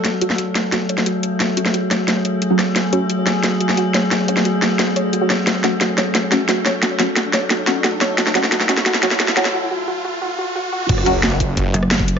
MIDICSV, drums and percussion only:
0, 0, Header, 1, 2, 480
1, 0, Start_track
1, 0, Key_signature, 3, "minor"
1, 0, Tempo, 338983
1, 65, Time_signature, 4, 2, 24, 8
1, 17262, End_track
2, 0, Start_track
2, 0, Title_t, "Drums"
2, 65, Note_on_c, 9, 38, 49
2, 65, Note_on_c, 9, 42, 82
2, 206, Note_off_c, 9, 38, 0
2, 206, Note_off_c, 9, 42, 0
2, 304, Note_on_c, 9, 42, 92
2, 424, Note_on_c, 9, 38, 41
2, 446, Note_off_c, 9, 42, 0
2, 544, Note_on_c, 9, 42, 80
2, 566, Note_off_c, 9, 38, 0
2, 685, Note_off_c, 9, 42, 0
2, 784, Note_on_c, 9, 37, 36
2, 784, Note_on_c, 9, 38, 48
2, 784, Note_on_c, 9, 42, 90
2, 926, Note_off_c, 9, 37, 0
2, 926, Note_off_c, 9, 38, 0
2, 926, Note_off_c, 9, 42, 0
2, 1024, Note_on_c, 9, 38, 49
2, 1024, Note_on_c, 9, 42, 81
2, 1166, Note_off_c, 9, 38, 0
2, 1166, Note_off_c, 9, 42, 0
2, 1264, Note_on_c, 9, 42, 94
2, 1384, Note_on_c, 9, 38, 45
2, 1405, Note_off_c, 9, 42, 0
2, 1504, Note_on_c, 9, 42, 82
2, 1525, Note_off_c, 9, 38, 0
2, 1646, Note_off_c, 9, 42, 0
2, 1744, Note_on_c, 9, 42, 89
2, 1886, Note_off_c, 9, 42, 0
2, 1984, Note_on_c, 9, 38, 54
2, 1984, Note_on_c, 9, 42, 82
2, 2126, Note_off_c, 9, 38, 0
2, 2126, Note_off_c, 9, 42, 0
2, 2224, Note_on_c, 9, 42, 92
2, 2344, Note_on_c, 9, 38, 47
2, 2366, Note_off_c, 9, 42, 0
2, 2465, Note_on_c, 9, 42, 80
2, 2486, Note_off_c, 9, 38, 0
2, 2606, Note_off_c, 9, 42, 0
2, 2705, Note_on_c, 9, 37, 36
2, 2705, Note_on_c, 9, 38, 54
2, 2705, Note_on_c, 9, 42, 92
2, 2847, Note_off_c, 9, 37, 0
2, 2847, Note_off_c, 9, 38, 0
2, 2847, Note_off_c, 9, 42, 0
2, 2945, Note_on_c, 9, 38, 56
2, 2945, Note_on_c, 9, 42, 80
2, 3086, Note_off_c, 9, 38, 0
2, 3086, Note_off_c, 9, 42, 0
2, 3184, Note_on_c, 9, 42, 92
2, 3326, Note_off_c, 9, 42, 0
2, 3424, Note_on_c, 9, 42, 80
2, 3566, Note_off_c, 9, 42, 0
2, 3664, Note_on_c, 9, 37, 55
2, 3664, Note_on_c, 9, 38, 58
2, 3664, Note_on_c, 9, 42, 89
2, 3806, Note_off_c, 9, 37, 0
2, 3806, Note_off_c, 9, 38, 0
2, 3806, Note_off_c, 9, 42, 0
2, 3904, Note_on_c, 9, 38, 61
2, 3904, Note_on_c, 9, 42, 77
2, 4046, Note_off_c, 9, 38, 0
2, 4046, Note_off_c, 9, 42, 0
2, 4144, Note_on_c, 9, 42, 91
2, 4285, Note_off_c, 9, 42, 0
2, 4384, Note_on_c, 9, 42, 79
2, 4525, Note_off_c, 9, 42, 0
2, 4624, Note_on_c, 9, 37, 35
2, 4624, Note_on_c, 9, 38, 59
2, 4624, Note_on_c, 9, 42, 88
2, 4766, Note_off_c, 9, 37, 0
2, 4766, Note_off_c, 9, 38, 0
2, 4766, Note_off_c, 9, 42, 0
2, 4864, Note_on_c, 9, 38, 62
2, 4864, Note_on_c, 9, 42, 77
2, 5005, Note_off_c, 9, 38, 0
2, 5005, Note_off_c, 9, 42, 0
2, 5104, Note_on_c, 9, 42, 90
2, 5224, Note_on_c, 9, 38, 56
2, 5246, Note_off_c, 9, 42, 0
2, 5344, Note_on_c, 9, 42, 74
2, 5366, Note_off_c, 9, 38, 0
2, 5485, Note_off_c, 9, 42, 0
2, 5584, Note_on_c, 9, 38, 62
2, 5584, Note_on_c, 9, 42, 89
2, 5726, Note_off_c, 9, 38, 0
2, 5726, Note_off_c, 9, 42, 0
2, 5824, Note_on_c, 9, 38, 66
2, 5824, Note_on_c, 9, 42, 77
2, 5966, Note_off_c, 9, 38, 0
2, 5966, Note_off_c, 9, 42, 0
2, 6064, Note_on_c, 9, 42, 87
2, 6184, Note_on_c, 9, 38, 56
2, 6206, Note_off_c, 9, 42, 0
2, 6304, Note_on_c, 9, 42, 78
2, 6326, Note_off_c, 9, 38, 0
2, 6446, Note_off_c, 9, 42, 0
2, 6544, Note_on_c, 9, 37, 34
2, 6544, Note_on_c, 9, 38, 69
2, 6544, Note_on_c, 9, 42, 86
2, 6686, Note_off_c, 9, 37, 0
2, 6686, Note_off_c, 9, 38, 0
2, 6686, Note_off_c, 9, 42, 0
2, 6785, Note_on_c, 9, 38, 69
2, 6785, Note_on_c, 9, 42, 76
2, 6926, Note_off_c, 9, 38, 0
2, 6926, Note_off_c, 9, 42, 0
2, 7025, Note_on_c, 9, 42, 89
2, 7167, Note_off_c, 9, 42, 0
2, 7265, Note_on_c, 9, 42, 73
2, 7406, Note_off_c, 9, 42, 0
2, 7505, Note_on_c, 9, 37, 53
2, 7505, Note_on_c, 9, 38, 71
2, 7505, Note_on_c, 9, 42, 83
2, 7646, Note_off_c, 9, 37, 0
2, 7646, Note_off_c, 9, 38, 0
2, 7646, Note_off_c, 9, 42, 0
2, 7744, Note_on_c, 9, 38, 75
2, 7744, Note_on_c, 9, 42, 78
2, 7886, Note_off_c, 9, 38, 0
2, 7886, Note_off_c, 9, 42, 0
2, 7984, Note_on_c, 9, 38, 74
2, 7984, Note_on_c, 9, 42, 89
2, 8126, Note_off_c, 9, 38, 0
2, 8126, Note_off_c, 9, 42, 0
2, 8224, Note_on_c, 9, 38, 76
2, 8224, Note_on_c, 9, 42, 75
2, 8366, Note_off_c, 9, 38, 0
2, 8366, Note_off_c, 9, 42, 0
2, 8465, Note_on_c, 9, 38, 75
2, 8465, Note_on_c, 9, 42, 86
2, 8606, Note_off_c, 9, 38, 0
2, 8606, Note_off_c, 9, 42, 0
2, 8705, Note_on_c, 9, 38, 77
2, 8705, Note_on_c, 9, 42, 78
2, 8847, Note_off_c, 9, 38, 0
2, 8847, Note_off_c, 9, 42, 0
2, 8945, Note_on_c, 9, 38, 80
2, 8945, Note_on_c, 9, 42, 92
2, 9086, Note_off_c, 9, 38, 0
2, 9086, Note_off_c, 9, 42, 0
2, 9185, Note_on_c, 9, 38, 83
2, 9185, Note_on_c, 9, 42, 75
2, 9326, Note_off_c, 9, 38, 0
2, 9326, Note_off_c, 9, 42, 0
2, 9425, Note_on_c, 9, 38, 78
2, 9425, Note_on_c, 9, 42, 89
2, 9566, Note_off_c, 9, 38, 0
2, 9566, Note_off_c, 9, 42, 0
2, 9665, Note_on_c, 9, 38, 85
2, 9665, Note_on_c, 9, 42, 83
2, 9807, Note_off_c, 9, 38, 0
2, 9807, Note_off_c, 9, 42, 0
2, 9905, Note_on_c, 9, 38, 86
2, 9905, Note_on_c, 9, 42, 96
2, 10047, Note_off_c, 9, 38, 0
2, 10047, Note_off_c, 9, 42, 0
2, 10145, Note_on_c, 9, 38, 88
2, 10145, Note_on_c, 9, 42, 78
2, 10286, Note_off_c, 9, 38, 0
2, 10286, Note_off_c, 9, 42, 0
2, 10385, Note_on_c, 9, 38, 85
2, 10385, Note_on_c, 9, 42, 92
2, 10526, Note_off_c, 9, 38, 0
2, 10526, Note_off_c, 9, 42, 0
2, 10625, Note_on_c, 9, 38, 86
2, 10625, Note_on_c, 9, 42, 82
2, 10767, Note_off_c, 9, 38, 0
2, 10767, Note_off_c, 9, 42, 0
2, 10864, Note_on_c, 9, 38, 86
2, 10864, Note_on_c, 9, 42, 94
2, 11006, Note_off_c, 9, 38, 0
2, 11006, Note_off_c, 9, 42, 0
2, 11104, Note_on_c, 9, 38, 90
2, 11104, Note_on_c, 9, 42, 78
2, 11246, Note_off_c, 9, 38, 0
2, 11246, Note_off_c, 9, 42, 0
2, 11345, Note_on_c, 9, 38, 87
2, 11345, Note_on_c, 9, 42, 86
2, 11486, Note_off_c, 9, 38, 0
2, 11486, Note_off_c, 9, 42, 0
2, 11585, Note_on_c, 9, 38, 94
2, 11585, Note_on_c, 9, 42, 84
2, 11706, Note_off_c, 9, 38, 0
2, 11706, Note_on_c, 9, 38, 83
2, 11727, Note_off_c, 9, 42, 0
2, 11825, Note_off_c, 9, 38, 0
2, 11825, Note_on_c, 9, 38, 93
2, 11825, Note_on_c, 9, 42, 96
2, 11945, Note_off_c, 9, 38, 0
2, 11945, Note_on_c, 9, 38, 80
2, 11967, Note_off_c, 9, 42, 0
2, 12064, Note_off_c, 9, 38, 0
2, 12064, Note_on_c, 9, 38, 93
2, 12064, Note_on_c, 9, 42, 81
2, 12185, Note_off_c, 9, 38, 0
2, 12185, Note_on_c, 9, 38, 82
2, 12206, Note_off_c, 9, 42, 0
2, 12305, Note_off_c, 9, 38, 0
2, 12305, Note_on_c, 9, 38, 95
2, 12305, Note_on_c, 9, 42, 92
2, 12425, Note_off_c, 9, 38, 0
2, 12425, Note_on_c, 9, 38, 88
2, 12446, Note_off_c, 9, 42, 0
2, 12545, Note_off_c, 9, 38, 0
2, 12545, Note_on_c, 9, 38, 98
2, 12545, Note_on_c, 9, 42, 83
2, 12664, Note_off_c, 9, 38, 0
2, 12664, Note_on_c, 9, 38, 92
2, 12686, Note_off_c, 9, 42, 0
2, 12784, Note_off_c, 9, 38, 0
2, 12784, Note_on_c, 9, 38, 98
2, 12784, Note_on_c, 9, 42, 96
2, 12904, Note_off_c, 9, 38, 0
2, 12904, Note_on_c, 9, 38, 86
2, 12926, Note_off_c, 9, 42, 0
2, 13024, Note_off_c, 9, 38, 0
2, 13024, Note_on_c, 9, 38, 100
2, 13024, Note_on_c, 9, 42, 83
2, 13144, Note_off_c, 9, 38, 0
2, 13144, Note_on_c, 9, 38, 89
2, 13166, Note_off_c, 9, 42, 0
2, 13265, Note_off_c, 9, 38, 0
2, 13265, Note_on_c, 9, 38, 97
2, 13265, Note_on_c, 9, 42, 90
2, 13385, Note_off_c, 9, 38, 0
2, 13385, Note_on_c, 9, 38, 89
2, 13406, Note_off_c, 9, 42, 0
2, 13526, Note_off_c, 9, 38, 0
2, 15425, Note_on_c, 9, 36, 122
2, 15425, Note_on_c, 9, 42, 86
2, 15425, Note_on_c, 9, 49, 107
2, 15545, Note_on_c, 9, 37, 51
2, 15566, Note_off_c, 9, 36, 0
2, 15567, Note_off_c, 9, 42, 0
2, 15567, Note_off_c, 9, 49, 0
2, 15665, Note_on_c, 9, 42, 97
2, 15687, Note_off_c, 9, 37, 0
2, 15807, Note_off_c, 9, 42, 0
2, 15905, Note_on_c, 9, 38, 121
2, 15905, Note_on_c, 9, 42, 85
2, 16025, Note_on_c, 9, 37, 38
2, 16047, Note_off_c, 9, 38, 0
2, 16047, Note_off_c, 9, 42, 0
2, 16145, Note_on_c, 9, 36, 107
2, 16146, Note_on_c, 9, 42, 95
2, 16167, Note_off_c, 9, 37, 0
2, 16286, Note_off_c, 9, 36, 0
2, 16287, Note_off_c, 9, 42, 0
2, 16385, Note_on_c, 9, 36, 59
2, 16386, Note_on_c, 9, 42, 83
2, 16526, Note_off_c, 9, 36, 0
2, 16527, Note_off_c, 9, 42, 0
2, 16626, Note_on_c, 9, 42, 101
2, 16746, Note_on_c, 9, 37, 37
2, 16767, Note_off_c, 9, 42, 0
2, 16865, Note_on_c, 9, 38, 119
2, 16865, Note_on_c, 9, 42, 82
2, 16887, Note_off_c, 9, 37, 0
2, 16985, Note_on_c, 9, 36, 105
2, 17007, Note_off_c, 9, 38, 0
2, 17007, Note_off_c, 9, 42, 0
2, 17105, Note_on_c, 9, 42, 97
2, 17127, Note_off_c, 9, 36, 0
2, 17247, Note_off_c, 9, 42, 0
2, 17262, End_track
0, 0, End_of_file